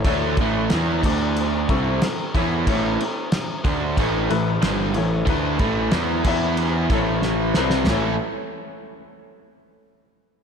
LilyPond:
<<
  \new Staff \with { instrumentName = "Upright piano" } { \time 4/4 \key a \mixolydian \tempo 4 = 92 <e' a' cis''>4. <d' a' d''>4 <e' a' cis'''>4 <e' a' cis''>8 | <e' a' cis''>4. r4 <e' a' b'>4 <e' a' cis''>8 | <e' a' b'>4. <e' b' e''>4 <e' a' cis''>4 <e' a' b'>8 | <e' a' cis''>8 r2. r8 | }
  \new Staff \with { instrumentName = "Overdriven electric guitar" } { \clef bass \time 4/4 \key a \mixolydian <d a d'>8 <a, e a>8 <e b e'>8 <d a d'>4 <c g c'>8 r8 <e b e'>8 | <a, e a>8 r4 <d a d'>8 <a, e a>8 <a, e>8 <g, d g>8 <a, e>8 | <d a d'>8 <a, e a>8 <e b e'>8 <e b e'>4 <a, e a>4 <c g c'>8 | <a, e a cis' a'>8 r2. r8 | }
  \new Staff \with { instrumentName = "Picked electric bass" } { \clef bass \time 4/4 \key a \mixolydian d,8 a,,8 e,8 d,4 c,8 r8 e,8 | a,,8 r4 d,8 a,,8 a,,8 g,,8 a,,8 | d,8 a,,8 e,8 e,4 a,,4 c,8 | a,,8 r2. r8 | }
  \new DrumStaff \with { instrumentName = "Drums" } \drummode { \time 4/4 <cymc bd>8 <cymc bd>8 <cymc sn>8 <cymc bd>8 cymc8 <cymc bd>8 <cymc sn>8 <cymc bd>8 | <cymc bd>8 cymc8 <cymc sn>8 <cymc bd>8 <cymc bd>8 cymc8 <cymc sn>8 cymc8 | <cymc bd>8 <cymc bd>8 <cymc sn>8 <cymc bd>8 cymc8 <cymc bd sn>8 sn8 sn16 sn16 | <cymc sn tomfh>4 r4 r4 r4 | }
>>